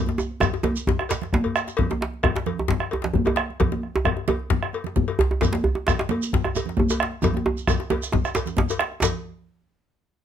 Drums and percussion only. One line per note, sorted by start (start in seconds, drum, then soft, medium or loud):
0.06 djembe slap medium
0.06 high conga medium
0.06 djembe tone medium
0.18 bombo rim soft
0.18 djembe tone loud
0.18 shekere soft
0.30 high conga soft
0.40 bombo rim loud
0.40 bombo low loud
0.40 cowbell soft
0.40 djembe tone loud
0.40 djembe bass medium
0.40 shekere medium
0.54 djembe slap medium
0.54 djembe tone medium
0.63 cowbell soft
0.63 djembe tone loud
0.63 high conga medium
0.63 low conga medium
0.76 djembe slap soft
0.76 high conga soft
0.76 shekere soft
0.87 bombo low medium
0.87 djembe slap medium
0.87 djembe tone loud
0.87 djembe bass medium
0.99 bombo rim medium
0.99 djembe tone medium
1.09 cowbell soft
1.09 djembe slap loud
1.09 shekere medium
1.22 bombo rim soft
1.22 djembe slap soft
1.22 low conga medium
1.33 bombo rim soft
1.33 bombo low loud
1.33 djembe slap medium
1.33 high conga medium
1.33 djembe bass soft
1.44 cowbell soft
1.44 djembe bass medium
1.56 bombo rim loud
1.56 djembe slap medium
1.56 shekere soft
1.67 bombo rim soft
1.67 djembe slap medium
1.67 high conga soft
1.67 shekere soft
1.77 bombo low loud
1.77 cowbell medium
1.77 djembe slap soft
1.77 low conga medium
1.77 djembe bass medium
1.90 djembe slap medium
1.90 high conga medium
1.90 djembe tone medium
2.01 bombo rim soft
2.01 djembe slap medium
2.01 high conga soft
2.14 high conga soft
2.23 bombo rim loud
2.23 bombo low loud
2.23 cowbell medium
2.23 djembe tone medium
2.23 djembe bass medium
2.36 bombo rim soft
2.36 djembe slap medium
2.36 djembe tone medium
2.46 cowbell medium
2.46 low conga medium
2.59 djembe tone medium
2.68 bombo rim soft
2.68 bombo low loud
2.68 djembe slap medium
2.68 djembe bass medium
2.71 djembe slap medium
2.80 bombo rim medium
2.80 djembe tone medium
2.91 bombo rim soft
2.91 cowbell soft
2.91 high conga soft
2.91 djembe tone medium
3.02 djembe slap medium
3.04 djembe slap medium
3.04 high conga soft
3.04 low conga medium
3.13 bombo low loud
3.13 high conga medium
3.13 djembe bass medium
3.25 cowbell medium
3.25 djembe tone medium
3.27 djembe tone loud
3.36 bombo rim loud
3.36 djembe slap medium
3.50 high conga soft
3.60 bombo low loud
3.60 cowbell medium
3.60 djembe slap soft
3.60 djembe tone loud
3.60 low conga medium
3.60 djembe bass medium
3.72 djembe slap medium
3.72 high conga medium
3.72 djembe tone medium
3.82 bombo rim soft
3.82 high conga soft
3.95 high conga soft
3.95 djembe tone loud
4.05 bombo rim loud
4.05 bombo low loud
4.05 cowbell medium
4.05 djembe bass medium
4.17 bombo rim soft
4.17 djembe tone medium
4.28 cowbell medium
4.28 high conga medium
4.28 djembe tone loud
4.28 low conga medium
4.39 djembe slap soft
4.50 bombo rim soft
4.50 bombo low loud
4.50 djembe slap loud
4.50 high conga soft
4.50 djembe bass loud
4.63 bombo rim medium
4.63 djembe tone medium
4.73 bombo rim soft
4.73 cowbell medium
4.73 high conga soft
4.84 djembe slap medium
4.84 high conga soft
4.84 low conga medium
4.96 bombo low loud
4.96 high conga medium
4.96 djembe bass medium
5.08 cowbell soft
5.08 djembe tone medium
5.19 djembe slap medium
5.19 djembe bass loud
5.30 high conga soft
5.30 djembe tone medium
5.41 bombo low loud
5.41 cowbell medium
5.41 djembe slap medium
5.41 low conga medium
5.43 djembe slap soft
5.43 djembe bass medium
5.43 shekere medium
5.52 djembe slap medium
5.52 high conga medium
5.55 djembe slap medium
5.55 djembe tone medium
5.63 bombo rim soft
5.63 high conga soft
5.63 djembe bass loud
5.75 high conga soft
5.75 djembe tone medium
5.87 bombo rim loud
5.87 bombo low loud
5.87 cowbell medium
5.87 djembe slap medium
5.87 djembe bass medium
5.87 shekere medium
5.99 bombo rim soft
5.99 djembe slap medium
6.01 djembe slap medium
6.01 djembe tone medium
6.09 cowbell medium
6.09 high conga medium
6.09 low conga medium
6.22 djembe slap soft
6.22 shekere medium
6.33 bombo rim soft
6.33 bombo low loud
6.33 djembe slap medium
6.33 djembe bass medium
6.44 bombo rim medium
6.44 djembe tone medium
6.55 bombo rim soft
6.55 cowbell medium
6.55 high conga soft
6.55 djembe tone medium
6.55 shekere medium
6.66 djembe slap medium
6.66 high conga soft
6.66 low conga medium
6.77 bombo low loud
6.77 high conga medium
6.77 djembe tone medium
6.77 djembe bass medium
6.90 cowbell medium
6.90 djembe tone medium
6.90 shekere soft
7.00 bombo rim loud
7.00 djembe slap medium
7.12 high conga soft
7.22 bombo low loud
7.22 cowbell medium
7.22 djembe slap soft
7.22 djembe tone loud
7.22 low conga medium
7.22 djembe bass medium
7.22 shekere medium
7.34 bombo rim soft
7.34 djembe slap medium
7.34 high conga medium
7.34 djembe tone medium
7.46 djembe tone loud
7.57 high conga soft
7.57 shekere soft
7.67 bombo rim loud
7.67 bombo low loud
7.67 cowbell medium
7.67 djembe tone loud
7.67 djembe bass medium
7.67 shekere medium
7.80 bombo rim soft
7.80 djembe slap medium
7.80 djembe tone medium
7.90 cowbell medium
7.90 djembe tone loud
7.90 high conga medium
7.90 low conga medium
8.03 bombo rim soft
8.03 djembe slap soft
8.03 shekere soft
8.12 bombo low loud
8.12 djembe slap medium
8.12 djembe tone loud
8.12 high conga soft
8.12 djembe bass medium
8.24 bombo rim medium
8.24 djembe tone medium
8.24 shekere soft
8.35 bombo rim soft
8.35 cowbell medium
8.35 djembe slap loud
8.35 high conga soft
8.35 shekere medium
8.46 djembe slap medium
8.46 low conga medium
8.46 shekere soft
8.57 bombo low loud
8.57 djembe slap soft
8.57 djembe slap loud
8.57 high conga medium
8.57 djembe bass medium
8.69 bombo rim soft
8.69 cowbell medium
8.69 djembe slap soft
8.69 djembe tone medium
8.69 shekere soft
8.79 bombo rim loud
8.79 djembe slap medium
8.79 high conga soft
8.92 bombo rim soft
8.92 djembe slap soft
9.02 bombo low medium
9.02 cowbell medium
9.02 djembe slap loud
9.02 low conga medium
9.02 djembe bass medium
9.02 shekere medium